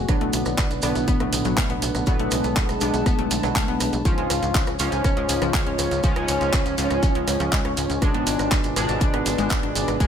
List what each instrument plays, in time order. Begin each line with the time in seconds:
Already playing: ambient pad F#4
0.09 analog synth bass B1, analog polysynth A2 D3 B3, synth pluck F#3, analog synth pad B3 D4 B4, analog synth lead D4, ambient pad D4, kick, cross-stick, closed hi-hat, maracas
0.21 analog synth bass B1, synth pluck A3, closed hi-hat
0.33 analog synth bass B1, open hi-hat, maracas
0.45 analog synth bass B1, ambient pad B4, cross-stick, closed hi-hat, maracas
0.58 analog synth bass B1, synth pluck B3, kick, clap, closed hi-hat, maracas
0.71 analog synth bass B1, closed hi-hat, maracas
0.82 analog synth bass B1, analog polysynth A2 D3 B3, synth pluck D4, cross-stick, open hi-hat, maracas
0.95 analog synth bass B1, closed hi-hat, maracas
1.08 analog synth bass A1, synth pluck B3, kick, closed hi-hat, maracas
1.20 analog synth bass B1, synth pluck A3, cross-stick, closed hi-hat
1.33 analog synth bass B1, open hi-hat, maracas
1.45 analog synth bass B1, synth pluck F#3, closed hi-hat, maracas
1.57 analog synth bass B1, synth pluck A3, kick, cross-stick, clap, closed hi-hat, maracas
1.65 ambient pad A5
1.70 analog synth bass B1, synth pluck B3, closed hi-hat
1.82 analog synth bass B1, open hi-hat, maracas
1.95 analog synth bass B1, cross-stick, closed hi-hat, maracas
2.06 analog synth bass B1, analog polysynth A2 D3 B3, synth pluck F#3, analog synth pad A5, kick, closed hi-hat, maracas
2.19 analog synth bass B1, synth pluck A3, closed hi-hat
2.31 analog synth bass B1, analog synth lead G#3, cross-stick, open hi-hat, maracas
2.44 analog synth bass B1, closed hi-hat, maracas
2.56 analog synth bass B1, synth pluck B3, kick, clap, closed hi-hat, maracas
2.69 analog synth bass B1, cross-stick, closed hi-hat, maracas
2.81 analog synth bass B1, analog polysynth A2 D3 B3, synth pluck D4, open hi-hat, maracas
2.94 analog synth bass B1, closed hi-hat, maracas
3.06 analog synth bass A1, synth pluck B3, kick, cross-stick, closed hi-hat, maracas
3.19 analog synth bass B1, synth pluck A3, closed hi-hat
3.31 analog synth bass B1, open hi-hat, maracas
3.43 analog synth bass B1, synth pluck F#3, cross-stick, closed hi-hat, maracas
3.56 analog synth bass B1, synth pluck A3, kick, clap, closed hi-hat, maracas
3.68 analog synth bass B1, synth pluck B3, closed hi-hat
3.80 analog synth bass B1, cross-stick, open hi-hat, maracas
3.93 analog synth bass B1, closed hi-hat, maracas
4.05 analog synth bass C#2, analog polysynth G#2 F3 C#4, synth pluck F3, analog synth pad G#3 F4 C#5, analog synth lead F4, ambient pad F4, kick, closed hi-hat, maracas
4.18 analog synth bass C#2, synth pluck G#3, closed hi-hat
4.30 analog synth bass C#2, cross-stick, open hi-hat, maracas
4.43 analog synth bass C#2, ambient pad C#5, closed hi-hat, maracas
4.55 analog synth bass C#2, synth pluck C#4, kick, clap, closed hi-hat, maracas
4.67 analog synth bass C#2, cross-stick, closed hi-hat, maracas
4.79 analog synth bass C#2, analog polysynth G#2 F3 C#4, synth pluck F4, open hi-hat, maracas
4.92 analog synth bass C#2, ambient pad G#5, closed hi-hat, maracas
5.04 analog synth bass B1, synth pluck C#4, kick, cross-stick, closed hi-hat, maracas
5.17 analog synth bass C#2, synth pluck G#3, closed hi-hat
5.29 analog synth bass C#2, open hi-hat, maracas
5.42 analog synth bass C#2, synth pluck F3, cross-stick, closed hi-hat, maracas
5.54 analog synth bass C#2, synth pluck G#3, kick, clap, closed hi-hat, maracas
5.67 analog synth bass C#2, synth pluck C#4, closed hi-hat
5.79 analog synth bass C#2, cross-stick, open hi-hat, maracas
5.91 analog synth bass C#2, closed hi-hat, maracas
6.03 analog synth bass C#2, analog polysynth G#2 F3 C#4, synth pluck F3, kick, closed hi-hat, maracas
6.16 analog synth bass C#2, synth pluck G#3, cross-stick, closed hi-hat
6.28 analog synth bass C#2, analog synth lead C#4, open hi-hat, maracas
6.41 analog synth bass C#2, closed hi-hat, maracas
6.53 synth pluck C#4, kick, cross-stick, clap, closed hi-hat, maracas
6.66 analog synth bass C#2, closed hi-hat, maracas
6.78 analog synth bass C#2, analog polysynth G#2 F3 C#4, synth pluck F4, open hi-hat, maracas
6.91 analog synth bass C#2, cross-stick, closed hi-hat, maracas
7.03 analog synth bass B1, synth pluck C#4, kick, closed hi-hat, maracas
7.15 analog synth bass C#2, synth pluck G#3, closed hi-hat
7.28 analog synth bass C#2, cross-stick, open hi-hat, maracas
7.40 analog synth bass C#2, synth pluck F3, closed hi-hat, maracas
7.52 synth pluck G#3, kick, clap, closed hi-hat, maracas
7.65 analog synth bass C#2, synth pluck C#4, cross-stick, closed hi-hat
7.77 analog synth bass C#2, open hi-hat, maracas
7.90 analog synth bass C#2, closed hi-hat, maracas
8.02 analog synth bass G#1, analog polysynth B2 G#3 D4, synth pluck G#3, analog synth lead D4, ambient pad D4, analog synth pad D4 B4, kick, cross-stick, closed hi-hat, maracas
8.14 analog synth bass G#1, synth pluck B3, closed hi-hat
8.27 analog synth bass G#1, open hi-hat, maracas
8.39 analog synth bass G#1, cross-stick, closed hi-hat, maracas
8.48 analog synth bass G#1, synth pluck D4, ambient pad B4, kick, clap, closed hi-hat, maracas
8.64 analog synth bass G#1, closed hi-hat, maracas
8.76 analog synth bass G#1, analog polysynth B2 G#3 D4, synth pluck G#4, cross-stick, open hi-hat, maracas
8.89 analog synth bass G#1, closed hi-hat, maracas
9.01 synth pluck D4, kick, closed hi-hat, maracas
9.14 analog synth bass G#1, synth pluck B3, cross-stick, closed hi-hat
9.26 analog synth bass G#1, open hi-hat, maracas
9.38 analog synth bass G#1, synth pluck G#3, closed hi-hat, maracas
9.50 analog synth bass G#1, synth pluck B3, kick, cross-stick, clap, closed hi-hat, maracas
9.63 analog synth bass G#1, synth pluck D4, closed hi-hat
9.75 analog synth bass G#1, open hi-hat, maracas
9.88 analog synth bass G#1, cross-stick, closed hi-hat, maracas
10.00 analog synth bass G#1, analog polysynth B2 G#3 D4, synth pluck G#3, kick, closed hi-hat, maracas